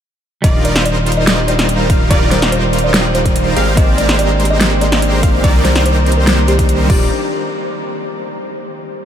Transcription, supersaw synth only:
0.44 0.73 G3 loud
0.44 0.73 D#4 medium
0.44 0.73 F4 medium
0.44 0.73 A#4 medium
0.44 0.73 D5 loud
0.75 1.87 G3 medium
0.75 1.87 D#4 medium
0.75 1.87 F4 medium
0.75 1.87 A#4 medium
0.75 1.87 C5 loud
1.90 2.08 F4 medium
2.11 2.40 G3 loud
2.11 2.40 D#4 medium
2.11 2.40 F4 medium
2.11 2.40 A#4 medium
2.11 2.40 D5 loud
2.42 3.54 G3 medium
2.42 3.54 D#4 medium
2.42 3.54 F4 medium
2.42 3.54 A#4 medium
2.42 3.54 C5 loud
3.56 3.75 G#3 medium
3.56 3.75 C4 medium
3.56 3.75 G4 medium
3.56 3.75 A#4 medium
3.56 3.75 F5 loud
3.77 4.06 G#3 loud
3.77 4.06 C4 medium
3.77 4.06 G4 medium
3.77 4.06 A#4 medium
3.77 4.06 D5 loud
4.09 5.21 G#3 medium
4.09 5.21 C4 medium
4.09 5.21 G4 medium
4.09 5.21 A#4 medium
4.09 5.21 C5 loud
5.23 5.42 G#3 medium
5.23 5.42 C4 medium
5.23 5.42 G4 medium
5.23 5.41 A#4 medium
5.23 5.42 F5 loud
5.44 5.73 G3 loud
5.44 5.73 C4 medium
5.44 5.73 D#4 medium
5.44 5.73 A#4 medium
5.44 5.73 D5 loud
5.75 6.87 G3 medium
5.75 6.87 C4 medium
5.75 6.87 D#4 medium
5.75 6.87 A#4 medium
5.75 6.87 C5 loud
6.90 7.05 G3 medium
6.90 7.05 D#4 medium
6.90 7.05 F4 medium
6.90 7.05 A#4 medium
6.90 7.05 D5 loud

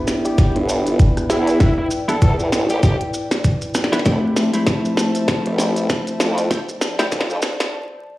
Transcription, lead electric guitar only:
0.26 0.52 G4 medium
1.30 1.58 E4 medium
1.61 1.72 E4 medium
1.78 1.87 E4 medium
2.09 2.18 A4 medium
2.22 2.33 A4 medium
2.70 2.79 G4 medium
2.83 2.95 G4 medium

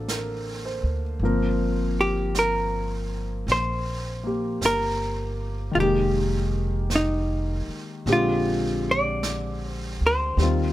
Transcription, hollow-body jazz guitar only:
2.01 2.37 G4 medium
2.39 3.51 A#4 medium
3.52 4.65 C5 medium
4.66 5.70 A#4 medium
5.75 5.78 F4 medium
5.80 6.96 G4 medium
6.96 8.12 D#4 medium
8.13 8.90 F4 medium
8.91 9.71 D5 medium
9.71 10.06 C5 medium
10.07 10.73 C5 medium

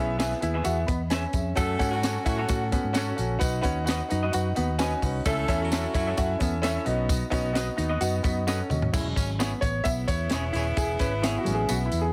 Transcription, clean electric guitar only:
0.19 0.31 G#4 medium
0.19 0.31 B4 medium
0.19 0.31 E5 medium
0.54 0.64 G#4 medium
0.54 0.63 B4 medium
0.54 0.63 E5 medium
1.11 1.23 G#4 medium
1.11 1.23 B4 medium
1.11 1.24 E5 medium
2.03 2.15 F#4 medium
2.03 2.15 A4 medium
2.03 2.15 C#5 medium
2.38 2.48 F#4 medium
2.38 2.47 A4 medium
2.38 2.47 C#5 medium
2.96 3.07 F#4 medium
2.96 3.07 A4 medium
2.96 3.08 C#5 medium
3.89 3.99 F#4 medium
3.89 4.00 B4 medium
3.89 4.00 D#5 medium
4.23 4.32 F#4 medium
4.23 4.31 B4 medium
4.23 4.31 D#5 medium
4.80 4.91 F#4 medium
4.80 4.92 B4 medium
4.80 4.92 D#5 medium
5.72 5.83 A4 medium
5.72 5.83 C#5 medium
5.72 5.83 E5 medium
6.07 6.16 A4 soft
6.07 6.16 C#5 medium
6.07 6.15 E5 medium
6.64 6.75 A4 medium
6.64 6.75 C#5 medium
6.64 6.76 E5 medium
7.55 7.66 F#4 medium
7.55 7.67 B4 medium
7.55 7.67 D#5 medium
7.89 7.99 F#4 soft
7.89 7.99 B4 medium
7.89 7.98 D#5 medium
8.47 8.58 F#4 medium
8.47 8.59 B4 medium
8.47 8.59 D#5 medium
9.39 9.51 E4 medium
9.39 9.51 G#4 medium
9.39 9.51 C#5 medium
10.32 10.43 E4 medium
10.32 10.43 G#4 medium
10.32 10.44 C#5 medium
10.55 10.63 E4 medium
10.55 10.64 G#4 medium
10.55 10.64 C#5 medium
11.23 11.35 E4 medium
11.23 11.35 G#4 medium
11.23 11.35 C#5 medium

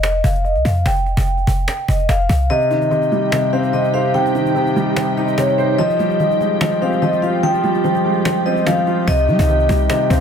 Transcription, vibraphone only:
0.00 0.20 D#5 loud
0.25 0.41 F5 medium
0.45 0.62 D#5 medium
0.65 0.82 F5 medium
0.86 1.84 G5 loud
1.88 2.05 D#5 medium
2.09 2.48 F5 medium
2.50 3.49 D#5 loud
3.53 3.70 F5 medium
3.73 3.90 D#5 medium
3.94 4.11 F5 medium
4.14 5.13 G5 loud
5.18 5.34 D#5 medium
5.38 5.76 C#5 medium
5.78 6.77 D#5 loud
6.82 6.99 F5 medium
7.02 7.19 D#5 medium
7.22 7.40 F5 medium
7.43 8.42 G5 loud
8.46 8.63 D#5 medium
8.67 9.05 F5 medium
9.08 10.06 D#5 loud
10.11 10.20 F5 medium

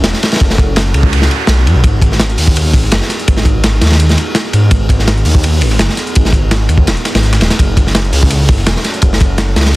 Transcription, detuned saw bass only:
0.04 0.13 E1 medium
0.41 0.93 F#1 loud
0.94 1.29 C#2 loud
1.48 1.68 B1 loud
1.66 1.75 F#2 medium
1.76 1.83 B1 loud
1.84 2.36 G#1 loud
2.38 2.75 D#2 loud
2.74 2.90 G#1 loud
2.92 3.00 F#1 medium
3.28 3.81 G#1 loud
3.82 4.16 D#2 loud
4.53 4.70 G#2 medium
4.71 5.24 G#1 loud
5.25 5.63 D#2 loud
5.61 5.78 G#1 medium
5.79 5.88 F#1 medium
6.16 6.68 G#1 loud
6.69 6.88 D#2 loud
6.87 6.96 D#1 loud
7.15 7.40 G#1 medium
7.41 7.50 D#1 loud
7.59 8.12 F#1 loud
8.13 8.50 C#2 loud
8.49 8.65 F#1 medium
8.67 8.75 E1 medium
9.03 9.55 F#1 loud
9.56 9.76 C#2 loud

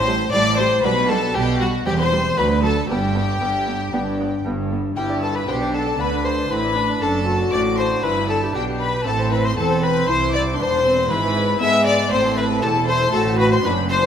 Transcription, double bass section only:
0.00 0.27 A1 loud
0.33 0.78 A1 loud
0.84 1.29 B1 loud
1.35 1.80 B1 medium
1.86 2.31 E1 medium
2.38 2.83 D2 loud
2.89 3.35 G1 loud
3.41 3.87 G1 medium
3.93 4.39 G1 medium
4.45 4.91 G1 medium
4.97 5.45 G1 medium
5.48 5.98 B1 medium
6.00 6.50 D2 medium
6.51 7.01 A1 medium
7.02 7.52 F#1 medium
7.53 8.03 A1 medium
8.04 8.54 G1 medium
8.55 9.05 B1 medium
9.06 9.56 A1 loud
9.58 10.08 E1 medium
10.08 10.58 C2 medium
10.59 11.10 E1 medium
11.10 11.61 G#1 medium
11.61 12.11 G#2 medium
12.12 12.62 A1 medium
12.63 13.13 E1 loud
13.13 13.63 A1 loud
13.64 14.06 F#1 medium

